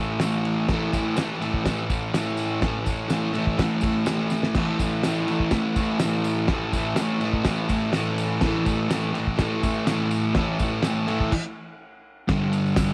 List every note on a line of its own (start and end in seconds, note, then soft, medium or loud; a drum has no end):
0.00 0.20 A2 medium
0.00 0.23 E3 medium
0.00 0.25 A3 medium
0.20 0.69 A2 medium
0.20 0.71 E3 medium
0.20 snare loud
0.20 ride loud
0.20 tambourine medium
0.26 0.73 A3 medium
0.45 ride medium
0.69 1.16 A2 medium
0.69 0.98 E3 loud
0.69 kick loud
0.69 snare loud
0.69 tambourine soft
0.69 crash loud
0.74 0.93 A3 loud
0.93 1.21 A3 medium
0.93 kick medium
0.93 ride medium
0.93 tambourine medium
0.98 1.19 E3 medium
1.17 1.64 A2 medium
1.17 1.44 E3 medium
1.17 snare loud
1.17 ride medium
1.17 tambourine medium
1.21 1.40 A3 medium
1.41 1.67 E3 medium
1.41 1.68 A3 medium
1.41 ride medium
1.41 tambourine soft
1.54 kick medium
1.65 2.13 A2 medium
1.65 1.93 E3 loud
1.65 1.89 A3 loud
1.65 kick medium
1.65 snare loud
1.65 ride medium
1.65 tambourine medium
1.89 2.17 A3 medium
1.89 kick loud
1.89 ride medium
1.89 tambourine medium
1.93 2.15 E3 medium
2.13 2.61 A2 medium
2.13 2.64 E3 medium
2.13 snare loud
2.13 ride loud
2.13 tambourine loud
2.17 2.66 A3 medium
2.37 ride medium
2.37 tambourine medium
2.61 3.09 A2 medium
2.61 2.90 E3 loud
2.61 kick loud
2.61 snare loud
2.61 ride loud
2.61 tambourine soft
2.66 2.85 A3 loud
2.85 3.13 A3 medium
2.85 kick medium
2.85 ride medium
2.85 tambourine medium
2.90 3.12 E3 medium
3.09 3.57 A2 medium
3.09 3.38 E3 medium
3.09 snare loud
3.09 ride loud
3.09 tambourine medium
3.14 3.33 A3 medium
3.34 3.62 A3 medium
3.34 ride medium
3.34 tambourine soft
3.38 3.59 E3 medium
3.47 kick medium
3.58 4.06 A2 medium
3.58 3.85 E3 medium
3.58 kick loud
3.58 snare loud
3.58 ride loud
3.58 tambourine medium
3.62 3.81 A3 loud
3.81 4.10 A3 medium
3.81 kick loud
3.81 ride medium
3.81 tambourine medium
3.86 4.09 E3 medium
4.06 4.55 A2 medium
4.06 4.57 E3 medium
4.06 snare loud
4.06 ride loud
4.06 tambourine loud
4.11 4.59 A3 medium
4.30 snare medium
4.30 tambourine medium
4.43 snare medium
4.55 5.02 A2 loud
4.55 4.82 E3 medium
4.55 kick loud
4.55 snare loud
4.55 crash loud
4.55 tambourine soft
4.55 splash medium
4.60 4.78 A3 loud
4.79 5.07 A3 medium
4.79 kick medium
4.79 ride medium
4.79 tambourine medium
4.83 5.05 E3 medium
5.03 5.51 A2 medium
5.03 5.31 E3 medium
5.03 snare loud
5.03 ride loud
5.03 tambourine medium
5.08 5.27 A3 medium
5.27 5.54 E3 medium
5.27 5.56 A3 medium
5.27 ride medium
5.27 tambourine soft
5.40 kick medium
5.51 5.99 A2 medium
5.51 5.81 E3 medium
5.51 kick loud
5.51 snare loud
5.51 ride loud
5.51 tambourine medium
5.56 5.76 A3 loud
5.76 6.04 A3 medium
5.76 kick loud
5.76 ride medium
5.76 tambourine medium
5.81 6.02 E3 soft
5.99 6.48 A2 medium
5.99 6.50 E3 medium
5.99 snare loud
5.99 ride medium
5.99 tambourine medium
6.05 6.52 A3 medium
6.24 ride medium
6.24 tambourine medium
6.48 6.95 A2 loud
6.48 6.76 E3 loud
6.48 kick loud
6.48 snare loud
6.48 ride loud
6.48 tambourine soft
6.53 6.72 A3 loud
6.73 6.98 E3 medium
6.73 7.00 A3 medium
6.73 kick medium
6.73 ride medium
6.73 tambourine medium
6.96 7.44 A2 medium
6.96 7.24 E3 medium
6.96 snare loud
6.96 ride medium
6.96 tambourine loud
7.01 7.20 A3 medium
7.20 7.48 A3 medium
7.20 ride medium
7.20 tambourine soft
7.25 7.47 E3 medium
7.33 kick medium
7.45 7.91 A2 medium
7.45 7.73 E3 loud
7.45 kick loud
7.45 snare loud
7.45 ride loud
7.45 tambourine medium
7.49 7.68 A3 loud
7.69 7.95 A3 medium
7.69 kick medium
7.69 ride medium
7.69 tambourine medium
7.73 7.93 E3 soft
7.92 8.41 A2 medium
7.92 8.44 E3 medium
7.92 8.46 A3 medium
7.92 snare loud
7.92 ride loud
7.92 tambourine medium
8.18 ride medium
8.18 tambourine medium
8.41 8.89 A2 medium
8.41 8.69 E3 loud
8.41 kick loud
8.41 snare loud
8.41 tambourine soft
8.41 crash loud
8.46 8.65 A3 loud
8.65 8.93 A3 medium
8.65 kick medium
8.65 ride medium
8.65 tambourine medium
8.70 8.92 E3 medium
8.89 9.37 A2 medium
8.89 9.18 E3 medium
8.89 snare loud
8.89 ride loud
8.89 tambourine medium
8.94 9.13 A3 medium
9.14 9.41 A3 medium
9.14 ride medium
9.14 tambourine soft
9.19 9.39 E3 medium
9.27 kick medium
9.38 9.85 A2 medium
9.38 9.66 E3 loud
9.38 kick loud
9.38 snare loud
9.38 ride loud
9.38 tambourine medium
9.42 9.62 A3 loud
9.63 9.90 A3 medium
9.63 kick loud
9.63 ride medium
9.63 tambourine medium
9.68 9.88 E3 soft
9.86 10.33 A2 medium
9.86 10.36 E3 medium
9.86 snare loud
9.86 ride loud
9.86 tambourine medium
9.91 10.38 A3 medium
10.11 ride medium
10.11 tambourine medium
10.35 10.82 A2 loud
10.35 10.63 E3 loud
10.35 kick loud
10.35 snare loud
10.35 ride loud
10.35 tambourine soft
10.39 10.58 A3 loud
10.59 10.86 A3 medium
10.59 kick medium
10.59 ride medium
10.59 tambourine medium
10.64 10.84 E3 medium
10.83 11.30 A2 medium
10.83 11.11 E3 medium
10.83 snare loud
10.83 ride loud
10.83 tambourine medium
10.87 11.06 A3 medium
11.08 11.31 A3 medium
11.08 ride medium
11.08 tambourine soft
11.12 11.33 E3 medium
11.20 kick medium
11.32 kick loud
11.32 crash loud
12.28 12.94 G2 loud
12.28 12.94 D3 medium
12.28 kick loud
12.28 snare loud
12.28 ride loud
12.28 tambourine soft
12.33 12.94 G3 loud
12.53 ride medium
12.53 tambourine medium
12.66 tambourine soft
12.76 kick loud
12.76 snare loud
12.76 ride loud
12.76 tambourine medium
12.89 tambourine soft